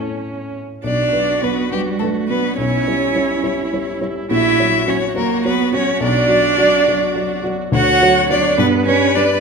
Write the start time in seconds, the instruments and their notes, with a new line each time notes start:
Already playing: grand piano A2 A3 E4 C#5, cello C#4, viola C#4
0.84 grand piano B1, cello D4, viola F#4, violin D5
1.12 grand piano F#3 D4 B4
1.42 grand piano F#3 D4 B4, cello B3, violin B4
1.71 grand piano F#3 D4 B4, cello G3, violin G4
1.99 grand piano F#3 D4 B4, cello A3, violin A4
2.28 grand piano F#3 D4 B4, cello B3, violin B4
2.57 grand piano B1, cello C#4, viola E4, violin C#5
2.87 grand piano G3 E4 C#5
3.15 grand piano G3 E4 C#5
3.43 grand piano G3 E4 C#5
3.73 grand piano G3 E4 C#5
4.01 grand piano G3 E4 C#5
4.30 grand piano A#1, cello E4, viola F#4, violin E5
4.59 grand piano F#3 F#4 C#5
4.87 grand piano F#3 F#4 C#5, cello C#4, violin C#5
5.15 grand piano F#3 F#4 C#5, cello A#3, violin A#4
5.45 grand piano F#3 F#4 C#5, cello B3, violin B4
5.72 grand piano F#3 F#4 C#5, cello C#4, violin C#5
6.00 grand piano B1, cello D4, violin D5
6.28 grand piano F#3 F#4 D5
6.58 grand piano F#3 F#4 D5
6.88 grand piano F#3 F#4 D5
7.16 grand piano F#3 F#4 D5
7.44 grand piano F#3 F#4 D5
7.72 grand piano D2, cello F#4, viola C#5, violin F#5
8.02 grand piano F#3 F#4 C#5
8.30 grand piano F#3 F#4 C#5, cello D4, violin D5
8.58 grand piano G2, cello B3, violin B4, viola B4
8.87 grand piano G3 D4 B4, cello C#4, violin C#5
9.15 grand piano G3 D4 B4, cello D4, violin D5